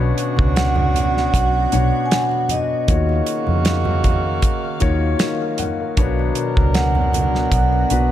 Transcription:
Already playing: fingered electric bass B1, grand piano B2 B3 D4 F#4 C#5, ambient pad B3 F#4, horn section C#4 D4 F#4
0.18 closed hi-hat
0.37 fingered electric bass C#2, kick, high conga
0.56 vibraphone F#5, snare, closed hi-hat, muted conga, high conga
0.76 muted conga, high conga, low conga
0.94 closed hi-hat, high conga, low conga
1.17 snare
1.34 fingered electric bass B1, vibraphone F#5, kick, closed hi-hat
1.54 muted conga
1.72 fingered electric bass B1, grand piano B2 B3 D4 F#4 C#5, closed hi-hat, high conga
2.06 vibraphone G#5
2.11 vibraphone F#5, snare, closed hi-hat, muted conga
2.31 muted conga
2.49 vibraphone D#5, closed hi-hat, low conga
2.88 fingered electric bass D#2, horn section C#3 A#3 F#4, grand piano D#3 A#3 F4 F#4 C#5, ambient pad D#3 F5, kick, closed hi-hat
3.09 muted conga
3.26 closed hi-hat
3.47 fingered electric bass F2, high conga
3.65 snare, closed hi-hat, high conga
3.85 high conga, low conga
4.04 kick, closed hi-hat, high conga, low conga
4.42 kick, closed hi-hat, muted conga
4.80 fingered electric bass D#2, grand piano D#3 A#3 F4 F#4 C#5, kick, closed hi-hat, high conga
5.19 grand piano A#4 D#5, snare, closed hi-hat, muted conga
5.42 grand piano A#4 F5
5.58 grand piano C#5 F#5, closed hi-hat, low conga
5.80 grand piano A#4 F5
5.97 fingered electric bass B1, grand piano B2 B3 D4 F#4 C#5, horn section F#3 D4 A#4, ambient pad B3 F#4, kick, closed hi-hat
6.19 muted conga
6.35 closed hi-hat
6.57 fingered electric bass C#2, kick, high conga
6.74 vibraphone F#5, snare, closed hi-hat, muted conga, high conga
6.95 high conga, low conga
7.13 closed hi-hat, high conga, low conga
7.35 snare
7.51 fingered electric bass B1, vibraphone F#5, kick, closed hi-hat
7.73 muted conga
7.90 fingered electric bass B1, grand piano B2 B3 D4 F#4 B4, closed hi-hat, high conga

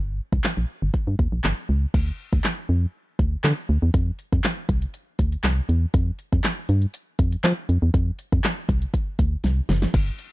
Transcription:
Already playing: fm bass G1
0.32 fm bass C2, kick
0.44 snare, clap
0.57 fm bass A#1
0.82 fm bass G1
0.94 kick
1.07 fm bass G2
1.19 fm bass D#2, kick
1.32 fm bass A#1
1.44 fm bass G1, snare, clap
1.69 fm bass C#2
1.94 fm bass D2, kick, crash
2.33 fm bass D2, kick
2.44 snare, clap
2.69 fm bass F2
3.19 fm bass D2, kick
3.44 fm bass D3, snare, clap
3.69 fm bass D2
3.82 fm bass E2
3.94 fm bass F2, kick, closed hi-hat
4.19 closed hi-hat
4.33 fm bass F2, kick
4.44 snare, clap, closed hi-hat
4.69 fm bass C2, kick, closed hi-hat
4.82 closed hi-hat
4.94 closed hi-hat
5.19 fm bass D2, kick, closed hi-hat
5.32 closed hi-hat
5.44 fm bass C2, snare, clap, closed hi-hat
5.69 fm bass E2, closed hi-hat
5.94 fm bass F2, kick, closed hi-hat
6.19 closed hi-hat
6.32 fm bass F2, kick
6.44 snare, clap, closed hi-hat
6.69 fm bass G2, closed hi-hat
6.82 closed hi-hat
6.94 closed hi-hat
7.19 fm bass F2, kick, closed hi-hat
7.32 closed hi-hat
7.44 fm bass F3, snare, clap, closed hi-hat
7.69 fm bass F2, closed hi-hat
7.82 fm bass E2
7.94 fm bass F2, kick, closed hi-hat
8.19 closed hi-hat
8.32 fm bass F2, kick
8.44 snare, clap, closed hi-hat
8.69 fm bass C2, kick, closed hi-hat
8.82 closed hi-hat
8.94 kick, closed hi-hat
9.19 fm bass D2, kick, closed hi-hat
9.44 fm bass C2, snare, closed hi-hat
9.69 fm bass F#1, snare, open hi-hat
9.82 snare
9.94 fm bass G1, kick, closed hi-hat, crash
10.19 closed hi-hat

